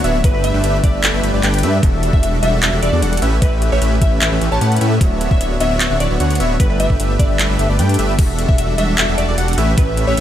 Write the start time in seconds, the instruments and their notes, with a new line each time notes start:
0.04 detuned saw bass D1, supersaw synth B3 D4 F#4 C#5 E5, digital synth lead E5, closed hi-hat
0.24 detuned saw bass G1, supersaw synth A3 D4 G4 B4, synth pluck B4, digital synth lead E5, kick, closed hi-hat
0.34 synth pluck B4
0.44 synth pluck E5, closed hi-hat
0.54 detuned saw bass G1, supersaw synth A3 D4 G4 B4 E5, digital synth lead E5
0.64 detuned saw bass G1, supersaw synth A3 D4 G4 B4 E5, digital synth lead E5, closed hi-hat
0.84 detuned saw bass G1, supersaw synth A3 D4 G4 B4 E5, synth pluck D5, digital synth lead E5, kick, closed hi-hat
1.03 detuned saw bass G1, supersaw synth A3 D4 G4 B4 E5, digital synth lead E5, clap, closed hi-hat
1.14 detuned saw bass G1, supersaw synth A3 D4 G4 B4 E5, digital synth lead E5
1.23 detuned saw bass G1, supersaw synth A3 D4 G4 B4 E5, digital synth lead E5, closed hi-hat
1.34 detuned saw bass G1, supersaw synth A3 D4 G4 B4 D5, digital synth lead D5
1.43 detuned saw bass G1, supersaw synth A3 D4 G4 B4 G5, digital synth lead G5, clap, closed hi-hat
1.54 closed hi-hat
1.58 closed hi-hat
1.63 detuned saw bass G2, supersaw synth A3 D4 G4 B4 E5, digital synth lead E5, closed hi-hat
1.83 detuned saw bass E1, supersaw synth G3 D4 A4, digital synth lead E5, kick, closed hi-hat
2.03 closed hi-hat
2.13 detuned saw bass E1, supersaw synth G3 D4 F#4 A4 E5, synth pluck E5, digital synth lead E5, kick
2.23 detuned saw bass E1, supersaw synth G3 D4 F#4 A4 E5, synth pluck E5, digital synth lead E5, closed hi-hat
2.42 detuned saw bass E1, supersaw synth G3 D4 F#4 A4 E5, synth pluck E5, digital synth lead E5, closed hi-hat
2.62 detuned saw bass E1, supersaw synth G3 D4 F#4 A4 E5, digital synth lead E5, clap, closed hi-hat
2.73 detuned saw bass E1, supersaw synth G3 D4 F#4 A4 E5, digital synth lead E5
2.82 detuned saw bass E1, supersaw synth G3 D4 F#4 A4 E5, synth pluck D5, digital synth lead E5, closed hi-hat
2.93 detuned saw bass E2, supersaw synth G3 D4 F#4 A4 D5, digital synth lead D5
3.02 detuned saw bass E1, supersaw synth G3 D4 F#4 A4 F#5, digital synth lead F#5, closed hi-hat
3.13 closed hi-hat
3.17 closed hi-hat
3.22 detuned saw bass A1, supersaw synth A3 C#4 G4 B4 E5, digital synth lead E5, closed hi-hat
3.42 detuned saw bass A1, supersaw synth A3 C#4 G4 B4 E5, synth pluck B4, digital synth lead E5, kick, closed hi-hat
3.62 closed hi-hat
3.72 detuned saw bass A1, supersaw synth A3 C#4 G4 B4 E5, synth pluck C#5, digital synth lead E5
3.82 detuned saw bass A1, supersaw synth A3 C#4 G4 B4 E5, digital synth lead E5, closed hi-hat
4.02 detuned saw bass A1, supersaw synth A3 C#4 G4 B4 E5, digital synth lead E5, synth pluck E5, kick, closed hi-hat
4.21 detuned saw bass A1, supersaw synth A3 C#4 G4 B4 E5, digital synth lead E5, clap, closed hi-hat
4.32 detuned saw bass A1, supersaw synth A3 C#4 G4 B4 E5, digital synth lead E5
4.41 detuned saw bass A1, supersaw synth A3 C#4 G4 B4 E5, digital synth lead E5, closed hi-hat
4.52 detuned saw bass A1, supersaw synth A3 C#4 G4 B4 C#5, digital synth lead C#5, synth pluck A5
4.61 detuned saw bass A2, supersaw synth A3 C#4 G4 B4 F#5, digital synth lead F#5, synth pluck A5, closed hi-hat
4.72 closed hi-hat
4.76 closed hi-hat
4.81 detuned saw bass A2, supersaw synth A3 C#4 G4 B4 E5, digital synth lead E5, closed hi-hat
5.01 detuned saw bass D1, supersaw synth B3 D4 F#4 C#5 E5, digital synth lead E5, kick, closed hi-hat
5.21 closed hi-hat
5.31 detuned saw bass D1, supersaw synth B3 D4 F#4 C#5 E5, digital synth lead E5, synth pluck E5, kick
5.41 detuned saw bass D1, supersaw synth B3 D4 F#4 C#5 E5, digital synth lead E5, synth pluck E5, closed hi-hat
5.60 detuned saw bass D1, supersaw synth B3 D4 F#4 C#5 E5, digital synth lead E5, synth pluck E5, closed hi-hat
5.80 detuned saw bass D1, supersaw synth B3 D4 F#4 C#5 E5, digital synth lead E5, clap, closed hi-hat
5.91 detuned saw bass D1, supersaw synth B3 D4 F#4 C#5 E5, digital synth lead E5
6.00 detuned saw bass D1, supersaw synth B3 D4 F#4 C#5 E5, synth pluck D5, digital synth lead E5, closed hi-hat
6.10 detuned saw bass D1, supersaw synth B3 D4 F#4 C#5 E5, digital synth lead E5
6.20 detuned saw bass D2, supersaw synth B3 D4 F#4 C#5 F#5, digital synth lead F#5, closed hi-hat
6.30 closed hi-hat
6.35 closed hi-hat
6.40 detuned saw bass D1, supersaw synth B3 D4 F#4 C#5 E5, digital synth lead E5, closed hi-hat
6.60 detuned saw bass G1, supersaw synth A3 D4 G4 B4 E5, synth pluck B4, digital synth lead E5, kick, closed hi-hat
6.70 synth pluck B4
6.80 synth pluck E5, closed hi-hat
6.90 detuned saw bass G1, supersaw synth A3 D4 G4 B4 E5, digital synth lead E5, kick
7.00 detuned saw bass G1, supersaw synth A3 D4 G4 B4 E5, digital synth lead E5, closed hi-hat
7.19 detuned saw bass G1, supersaw synth A3 D4 G4 B4 E5, synth pluck D5, digital synth lead E5, kick, closed hi-hat
7.39 detuned saw bass G1, supersaw synth A3 D4 G4 B4 E5, digital synth lead E5, clap, closed hi-hat
7.49 detuned saw bass G1, supersaw synth A3 D4 G4 B4 E5, digital synth lead E5
7.59 detuned saw bass G1, supersaw synth A3 D4 G4 B4 E5, digital synth lead E5, closed hi-hat
7.69 detuned saw bass G1, supersaw synth A3 D4 G4 B4 D5, digital synth lead D5
7.79 detuned saw bass G2, supersaw synth A3 D4 G4 B4 G5, digital synth lead G5, closed hi-hat
7.89 closed hi-hat
7.94 closed hi-hat
7.99 detuned saw bass G1, supersaw synth A3 D4 G4 B4 E5, digital synth lead E5, closed hi-hat
8.19 detuned saw bass E1, supersaw synth G3 D4 F#4 A4, digital synth lead E5, kick, closed hi-hat, crash
8.39 closed hi-hat
8.48 detuned saw bass E1, supersaw synth G3 D4 A4 E5, synth pluck E5, digital synth lead E5, kick
8.58 detuned saw bass E1, supersaw synth G3 D4 F#4 A4 E5, synth pluck E5, digital synth lead E5, closed hi-hat
8.78 detuned saw bass E1, supersaw synth G3 D4 F#4 A4 E5, synth pluck E5, digital synth lead E5, closed hi-hat
8.98 detuned saw bass E1, supersaw synth G3 D4 F#4 A4 E5, digital synth lead E5, clap, closed hi-hat
9.08 detuned saw bass E1, supersaw synth G3 D4 F#4 A4 E5, digital synth lead E5
9.18 detuned saw bass E1, supersaw synth G3 D4 F#4 A4 E5, synth pluck D5, digital synth lead E5, closed hi-hat
9.28 detuned saw bass E1, supersaw synth G3 D4 F#4 A4 D5, digital synth lead D5
9.38 detuned saw bass E1, supersaw synth G3 D4 F#4 A4 F#5, digital synth lead F#5, closed hi-hat
9.48 closed hi-hat
9.53 closed hi-hat
9.58 detuned saw bass A1, supersaw synth A3 C#4 G4 B4 E5, digital synth lead E5, closed hi-hat
9.78 detuned saw bass A1, supersaw synth G4 B4 E5, synth pluck B4, digital synth lead E5, kick, closed hi-hat
9.97 closed hi-hat
10.07 detuned saw bass A1, supersaw synth A3 C#4 G4 B4 E5, synth pluck C#5, digital synth lead E5
10.17 detuned saw bass A1